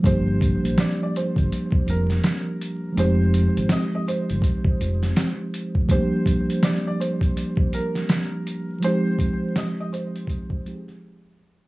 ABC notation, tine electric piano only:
X:1
M:4/4
L:1/8
Q:"Swing 16ths" 1/4=82
K:Gphr
V:1 name="Tine electric piano"
[F,G,B,DG]8 | [F,A,CEG]8 | [F,G,=A,B,DG]8 | [F,A,CEG]4- [F,A,CEG] [F,A,CEGA]3 |]